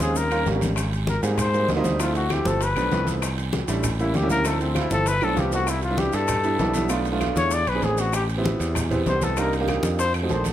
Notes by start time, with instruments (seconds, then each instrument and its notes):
0.00 picked electric bass D#2, upright piano G#3 C4 C#4 F4, trumpet G#4, high conga, short guiro, maracas
0.15 trumpet A#4, low bongo, high timbale, long guiro, maracas
0.25 low bongo
0.31 upright piano G3 A#3 C#4 F4, high conga, high timbale, claves, maracas
0.46 picked electric bass G#1, upright piano G3 A#3 C#4 G4, low bongo, high conga, low timbale, short guiro, maracas
0.56 low bongo
0.61 high conga, high timbale, short guiro, maracas
0.66 low bongo
0.76 high bongo, high conga, high timbale, long guiro, claves, maracas
0.92 high bongo, high conga, high timbale, maracas
1.07 trumpet A#4, high bongo, high conga, low timbale, short guiro, maracas
1.23 picked electric bass G#2, upright piano G3 A#3 C4 D#4, trumpet G4, high bongo, high conga, high timbale, short guiro, maracas
1.38 trumpet C5, high bongo, high conga, low conga, high timbale, long guiro, claves, maracas
1.53 upright piano G3 A#3 C4 D#4, high bongo, high conga, high timbale, maracas
1.68 picked electric bass D2, high bongo, low bongo, high conga, low timbale, short guiro, maracas
1.76 upright piano G3 A#3 C4 D#4
1.84 upright piano G3 A#3 C4 D#4, high conga, high timbale, short guiro, maracas
1.99 upright piano F3 A3 C4 E4, trumpet F4, high bongo, high conga, high timbale, long guiro, claves, maracas
2.15 trumpet F#4, high bongo, high conga, high timbale, maracas
2.30 upright piano F3 A3 C4 E4, trumpet G4, high bongo, high conga, high timbale, low timbale, short guiro, claves, maracas
2.45 picked electric bass G1, upright piano F3 A3 C4 G4, trumpet A4, high bongo, high conga, short guiro, maracas
2.61 trumpet B4, high bongo, high conga, high timbale, long guiro, maracas
2.76 picked electric bass B1, upright piano F3 A3 B3 D4, high bongo, high conga, high timbale, claves, maracas
2.91 picked electric bass C2, upright piano F3 A3 B3 E4, high bongo, low bongo, high conga, low timbale, short guiro, maracas
3.07 high conga, high timbale, short guiro, maracas
3.22 high bongo, high timbale, long guiro, claves, maracas
3.38 high bongo, high conga, high timbale, maracas
3.53 high bongo, high conga, low timbale, short guiro, maracas
3.68 picked electric bass A1, upright piano G3 A3 D4 E4, high bongo, high conga, high timbale, short guiro, maracas
3.83 high bongo, high conga, low conga, high timbale, long guiro, claves, maracas
3.99 upright piano G3 A#3 C#4 E4, trumpet E4, high bongo, high conga, high timbale, maracas
4.14 picked electric bass D2, trumpet G4, high bongo, low bongo, high conga, low timbale, short guiro, maracas
4.22 upright piano G3 A#3 C#4 E4
4.29 upright piano G3 A#3 C#4 E4, trumpet A#4, high conga, high timbale, short guiro, maracas
4.45 upright piano F3 A3 C4 E4, trumpet A4, high bongo, high conga, high timbale, long guiro, claves, maracas
4.60 trumpet C4, high bongo, high conga, high timbale, maracas
4.75 upright piano F3 A3 C4 F4, trumpet E4, high bongo, high conga, high timbale, low timbale, short guiro, claves, maracas
4.90 picked electric bass G1, upright piano F3 A3 C4 E4, trumpet A4, high bongo, high conga, short guiro, maracas
5.06 trumpet B4, high bongo, high conga, high timbale, long guiro, maracas
5.21 picked electric bass B1, upright piano F3 A3 B3 D4, trumpet A4, high bongo, high conga, high timbale, claves, maracas
5.36 picked electric bass C2, upright piano F3 A3 B3 F4, trumpet G4, high bongo, low bongo, high conga, short guiro, maracas
5.52 trumpet F#4, low timbale, short guiro, maracas
5.67 trumpet E4, high bongo, high conga, high timbale, long guiro, claves, maracas
5.82 trumpet F4, high bongo, high conga, high timbale, maracas
5.90 upright piano G3 B3 D4 E4
5.97 trumpet G4, high bongo, high conga, low timbale, short guiro, maracas
6.13 picked electric bass G2, trumpet A4, high bongo, high conga, high timbale, short guiro, maracas
6.28 high bongo, high conga, low conga, high timbale, long guiro, claves, maracas
6.44 upright piano G3 B3 D4 E4, high bongo, high conga, high timbale, maracas
6.59 picked electric bass B1, upright piano G3 B3 D4 E4, high bongo, low bongo, high conga, low timbale, short guiro, maracas
6.74 upright piano G3 B3 D4 E4, high conga, high timbale, short guiro, maracas
6.89 upright piano A3 B3 D4 F4, high bongo, high conga, high timbale, long guiro, claves, maracas
7.05 high bongo, high conga, high timbale, maracas
7.12 upright piano A3 B3 D4 F4
7.20 upright piano A3 B3 D4 F4, high bongo, high conga, high timbale, low timbale, short guiro, claves, maracas
7.36 picked electric bass E2, trumpet C#5, high bongo, high conga, short guiro, maracas
7.51 trumpet D5, high bongo, high conga, high timbale, long guiro, maracas
7.67 picked electric bass B1, trumpet B4, high bongo, high conga, high timbale, claves, maracas
7.74 upright piano B3 C4 D4 G#4
7.82 picked electric bass A1, upright piano B3 C4 D4 G#4, trumpet G#4, high bongo, low bongo, high conga, low timbale, short guiro, maracas
7.98 trumpet F#4, high timbale, short guiro, maracas
8.13 trumpet G4, high bongo, high conga, high timbale, long guiro, claves, maracas
8.28 high bongo, high conga, high timbale, maracas
8.37 upright piano B3 C4 E4 G4
8.44 high bongo, high conga, low timbale, short guiro, maracas
8.60 picked electric bass E2, high bongo, high conga, high timbale, short guiro, maracas
8.75 high bongo, high conga, low conga, high timbale, long guiro, claves, maracas
8.90 upright piano B3 C4 E4 G4, high bongo, high conga, low conga, high timbale, maracas
9.06 picked electric bass C2, upright piano B3 C4 E4 G4, trumpet C5, high bongo, low bongo, high conga, low timbale, short guiro, maracas
9.21 upright piano B3 C4 E4 A4, trumpet A4, high conga, high timbale, short guiro, maracas
9.37 upright piano A#3 D4 D#4 G4, trumpet A#4, high bongo, high conga, high timbale, long guiro, claves, maracas
9.53 high bongo, high conga, high timbale, maracas
9.60 upright piano A#3 D4 D#4 G4
9.68 upright piano A#3 D4 D#4 G4, high bongo, high conga, high timbale, low timbale, short guiro, claves, maracas
9.83 picked electric bass F2, high conga, short guiro, maracas
9.98 trumpet C5, high bongo, high conga, high timbale, long guiro, maracas
10.14 trumpet A4, high bongo, high conga, high timbale, claves, maracas
10.22 upright piano A3 C4 D#4 F#4
10.29 picked electric bass A#1, upright piano A3 C4 D#4 A4, trumpet C5, high bongo, low bongo, high conga, low timbale, short guiro, maracas
10.44 high conga, high timbale, short guiro, maracas